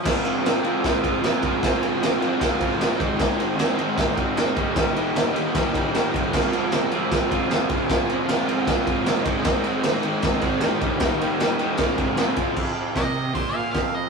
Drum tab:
CC |x-------|--------|--------|--------|
RD |-xxxxxxx|xxxxxxxx|xxxxxxxx|xxxxxxxx|
HH |--------|--------|--------|--------|
SD |o-o-o-o-|o-o-o-o-|o-o-o-o-|o-o-o-o-|
BD |o---oo-o|o---oo-o|o---oo-o|o---oo-o|

CC |x-------|--------|--------|--------|
RD |-xxxxxxx|xxxxxxxx|xxxxxxxx|xxxxxxxx|
HH |--------|--------|--------|--------|
SD |o-o-o-o-|o-o-o-o-|o-o-o-o-|o-o-o-o-|
BD |o---oo-o|o---oo-o|o---oo-o|o---oo-o|

CC |x-------|
RD |--------|
HH |--o-o-o-|
SD |--o---o-|
BD |o-o-o-o-|